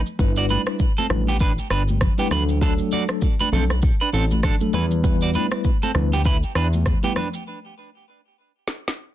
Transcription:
0.06 shaker medium
0.19 0.58 G1 loud
0.19 0.63 G3 medium
0.19 0.63 D4 medium
0.19 0.63 E4 medium
0.19 0.63 B4 loud
0.19 kick loud
0.19 shaker medium
0.36 0.45 F#4 medium
0.36 0.45 D5 medium
0.36 shaker medium
0.49 0.61 D4 medium
0.49 0.61 B4 medium
0.49 high conga medium
0.49 shaker medium
0.66 0.84 G3 medium
0.66 0.84 D4 medium
0.66 0.84 E4 medium
0.66 0.84 B4 medium
0.66 cross-stick loud
0.66 shaker medium
0.79 kick medium
0.79 shaker medium
0.97 1.06 C4 medium
0.97 1.06 A4 medium
0.97 high conga medium
0.97 shaker medium
1.10 1.59 A1 medium
1.10 1.30 G3 medium
1.10 1.30 D4 medium
1.10 1.31 E4 medium
1.10 1.31 B4 medium
1.10 cross-stick medium
1.10 high conga medium
1.10 low conga medium
1.28 1.36 B3 medium
1.28 1.36 G4 medium
1.28 high conga medium
1.28 shaker medium
1.40 1.52 D4 medium
1.40 1.51 B4 medium
1.40 kick loud
1.40 shaker medium
1.58 shaker medium
1.70 2.09 G1 medium
1.70 1.82 D4 medium
1.70 1.82 B4 medium
1.70 cross-stick medium
1.70 shaker soft
1.88 high conga medium
1.88 shaker soft
2.01 kick medium
2.01 cross-stick medium
2.01 low conga medium
2.01 shaker medium
2.18 2.35 G3 medium
2.18 2.27 B3 medium
2.18 2.30 D4 medium
2.18 2.35 E4 medium
2.18 2.27 G4 medium
2.18 2.35 B4 medium
2.18 high conga medium
2.18 shaker medium
2.31 2.80 D2 loud
2.31 2.59 F#3 medium
2.31 2.59 A3 medium
2.31 2.59 D4 medium
2.31 2.43 D4 medium
2.31 2.60 A4 loud
2.31 2.42 B4 medium
2.31 cross-stick medium
2.31 low conga medium
2.31 shaker medium
2.49 shaker medium
2.61 3.05 F#3 medium
2.61 3.05 A3 medium
2.61 3.05 D4 medium
2.61 2.73 D4 medium
2.61 3.05 A4 loud
2.61 2.73 A4 medium
2.61 kick loud
2.61 shaker medium
2.78 shaker medium
2.91 3.03 F#4 medium
2.91 3.03 D5 medium
2.91 high conga medium
2.91 shaker medium
3.09 3.26 F#3 medium
3.09 3.26 A3 medium
3.09 3.26 D4 medium
3.09 3.26 A4 medium
3.09 cross-stick loud
3.09 shaker medium
3.21 kick medium
3.21 shaker medium
3.40 3.48 D4 medium
3.40 3.48 B4 medium
3.40 high conga medium
3.40 shaker medium
3.52 3.91 B1 loud
3.52 3.73 F#3 medium
3.52 3.73 A3 medium
3.52 3.64 C4 medium
3.52 3.73 D4 medium
3.52 3.73 A4 medium
3.52 3.64 A4 medium
3.52 high conga medium
3.52 low conga medium
3.70 cross-stick medium
3.70 high conga medium
3.70 shaker medium
3.82 kick loud
3.82 shaker medium
4.01 4.09 D4 medium
4.01 4.09 B4 medium
4.01 shaker medium
4.13 4.52 A1 medium
4.13 4.25 C4 medium
4.13 4.24 A4 medium
4.13 shaker medium
4.31 high conga medium
4.31 shaker soft
4.43 4.55 D4 medium
4.43 4.54 A4 medium
4.43 kick medium
4.43 cross-stick medium
4.43 low conga medium
4.43 shaker medium
4.61 4.78 F#3 medium
4.61 4.78 A3 medium
4.61 4.78 D4 medium
4.61 4.78 A4 medium
4.61 high conga medium
4.61 shaker medium
4.73 5.37 E2 loud
4.73 5.02 G3 medium
4.73 5.02 B3 medium
4.73 5.02 E4 medium
4.73 4.85 E4 medium
4.73 5.02 B4 loud
4.73 4.85 B4 medium
4.73 low conga medium
4.73 shaker medium
4.91 shaker medium
5.04 5.48 G3 medium
5.04 5.48 B3 medium
5.04 5.48 E4 medium
5.04 5.48 B4 loud
5.04 kick loud
5.04 shaker medium
5.21 5.30 F#4 medium
5.21 5.30 D5 medium
5.21 shaker medium
5.34 5.46 D4 medium
5.34 5.45 B4 medium
5.34 high conga medium
5.34 shaker medium
5.51 5.68 G3 medium
5.51 5.69 B3 medium
5.51 5.69 E4 medium
5.51 5.69 B4 medium
5.51 cross-stick loud
5.51 shaker medium
5.64 kick medium
5.64 shaker medium
5.82 5.91 C4 medium
5.82 5.90 A4 medium
5.82 high conga medium
5.82 shaker medium
5.95 6.44 D2 medium
5.95 6.15 G3 medium
5.95 6.15 B3 medium
5.95 6.15 E4 medium
5.95 6.15 B4 medium
5.95 cross-stick medium
5.95 high conga medium
5.95 low conga medium
6.12 6.21 B3 medium
6.12 6.21 G4 medium
6.12 high conga medium
6.12 shaker medium
6.24 6.37 E4 medium
6.24 6.36 B4 medium
6.24 kick loud
6.24 shaker medium
6.43 shaker medium
6.55 6.94 E2 loud
6.55 6.67 D4 medium
6.55 6.67 B4 medium
6.55 cross-stick medium
6.55 shaker medium
6.73 high conga medium
6.73 shaker soft
6.86 kick medium
6.86 cross-stick medium
6.86 low conga medium
6.86 shaker medium
7.03 7.20 G3 medium
7.03 7.20 B3 medium
7.03 7.12 B3 medium
7.03 7.20 E4 medium
7.03 7.12 G4 medium
7.03 7.20 B4 medium
7.03 high conga medium
7.03 shaker medium
7.16 7.28 D4 medium
7.16 7.27 B4 medium
7.16 cross-stick medium
7.16 low conga medium
7.16 shaker medium
7.34 shaker medium
8.68 snare medium
8.88 snare medium

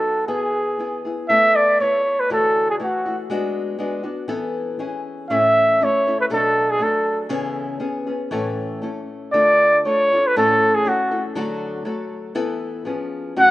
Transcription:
0.00 0.27 F#3 soft
0.00 0.28 B3 medium
0.00 0.28 D#4 soft
0.00 0.28 F#4 medium
0.00 0.27 A4 medium
0.28 0.79 E3 medium
0.28 0.78 B3 medium
0.28 0.79 E4 medium
0.28 1.01 G#4 medium
0.28 0.79 G#4 medium
0.79 1.05 E3 soft
0.79 1.05 B3 soft
0.79 1.05 E4 soft
0.79 1.04 G#4 medium
1.05 1.29 B3 soft
1.05 1.29 E4 soft
1.05 1.30 G#4 soft
1.28 1.79 A3 medium
1.28 1.79 B3 medium
1.28 1.80 E4 medium
1.28 1.80 A4 medium
1.28 1.57 E5 loud
1.55 1.80 D5 medium
1.80 2.29 A3 soft
1.80 2.30 B3 medium
1.80 2.30 E4 medium
1.80 2.31 A4 medium
1.80 2.21 C#5 medium
2.20 2.32 B4 medium
2.30 2.81 D3 medium
2.30 2.78 E3 medium
2.30 2.79 A3 medium
2.30 2.79 E4 medium
2.30 2.80 F#4 medium
2.30 2.67 A4 medium
2.70 2.75 G#4 medium
2.79 3.06 E3 soft
2.79 3.06 A3 medium
2.79 3.06 E4 medium
2.79 3.04 F#4 medium
2.79 3.17 F#4 medium
3.06 3.30 A3 soft
3.06 3.30 E4 soft
3.06 3.30 F#4 soft
3.30 3.77 G#3 medium
3.30 3.78 B3 medium
3.30 3.79 D4 medium
3.30 3.79 F#4 loud
3.79 4.05 G#3 medium
3.79 4.04 B3 medium
3.79 4.03 D4 medium
3.79 4.02 F#4 medium
4.03 4.28 B3 soft
4.03 4.28 D4 soft
4.03 4.28 F#4 medium
4.28 4.78 E3 medium
4.28 4.79 B3 loud
4.28 4.79 E4 medium
4.28 4.79 A4 medium
4.79 5.29 E3 medium
4.79 5.29 C#4 medium
4.79 5.30 E4 medium
4.79 5.31 G#4 medium
5.30 5.81 A2 medium
5.30 5.81 E3 medium
5.30 5.80 A3 medium
5.30 5.80 C#4 medium
5.30 5.81 E4 medium
5.30 5.81 A4 medium
5.30 5.85 E5 loud
5.81 6.07 A3 medium
5.81 6.07 C#4 medium
5.81 6.07 E4 medium
5.81 6.06 A4 medium
5.81 6.20 C#5 medium
6.07 6.29 A3 soft
6.07 6.30 C#4 soft
6.07 6.31 E4 soft
6.07 6.30 A4 soft
6.21 6.26 B4 medium
6.30 6.81 B2 medium
6.30 6.78 F#3 medium
6.30 6.79 A3 medium
6.30 6.80 D4 medium
6.30 6.79 A4 medium
6.30 6.72 A4 medium
6.70 6.84 G#4 medium
6.79 7.30 F#3 medium
6.79 7.29 A3 medium
6.79 7.29 D4 medium
6.79 7.29 A4 soft
6.79 7.20 A4 medium
7.29 7.80 C#3 medium
7.29 7.78 E3 medium
7.29 7.79 B3 loud
7.29 7.79 C#4 medium
7.29 7.80 G#4 medium
7.80 8.06 E3 soft
7.80 8.06 B3 medium
7.80 8.06 C#4 medium
7.80 8.05 G#4 medium
8.07 8.31 B3 soft
8.07 8.31 C#4 soft
8.07 8.31 G#4 medium
8.31 8.82 A2 medium
8.31 8.82 E3 loud
8.31 8.81 A3 medium
8.31 8.82 C#4 medium
8.31 8.82 E4 loud
8.31 8.83 A4 loud
8.82 9.33 A3 soft
8.82 9.33 C#4 medium
8.82 9.34 E4 soft
8.82 9.34 A4 medium
9.33 9.85 D3 medium
9.33 9.85 A3 medium
9.33 9.84 D4 medium
9.33 9.85 F4 medium
9.33 9.86 A4 medium
9.33 9.81 D5 loud
9.85 10.11 A3 medium
9.85 10.11 D4 soft
9.85 10.12 F4 medium
9.85 10.11 A4 medium
9.85 10.28 C#5 medium
10.12 10.36 D4 soft
10.12 10.36 F4 soft
10.12 10.36 A4 soft
10.27 10.37 B4 medium
10.36 10.86 A2 medium
10.36 10.86 E3 medium
10.36 10.84 A3 medium
10.36 10.85 C#4 medium
10.36 10.86 E4 medium
10.36 10.76 A4 medium
10.36 10.86 A4 medium
10.75 10.90 G#4 medium
10.85 11.11 A3 medium
10.85 11.11 C#4 medium
10.85 11.10 E4 medium
10.85 11.25 F#4 medium
10.85 11.10 A4 medium
11.11 11.35 A3 soft
11.11 11.36 C#4 soft
11.11 11.36 E4 soft
11.11 11.35 A4 medium
11.35 11.85 D3 medium
11.35 11.84 F#3 medium
11.35 11.84 A3 loud
11.35 11.85 F#4 loud
11.35 11.85 A4 loud
11.85 12.34 F#3 medium
11.85 12.35 A3 medium
11.85 12.35 F#4 medium
11.85 12.34 A4 medium
12.35 12.85 E3 medium
12.35 12.85 B3 loud
12.35 12.86 E4 medium
12.35 12.86 A4 loud
12.85 13.36 F3 medium
12.85 13.37 B3 medium
12.85 13.36 C#4 medium
12.85 13.37 G#4 medium
13.36 13.51 F#2 medium
13.36 13.51 C#3 medium
13.36 13.51 F#3 medium
13.36 13.51 A3 medium
13.36 13.51 C#4 medium
13.36 13.51 F#4 medium
13.36 13.51 F#5 loud

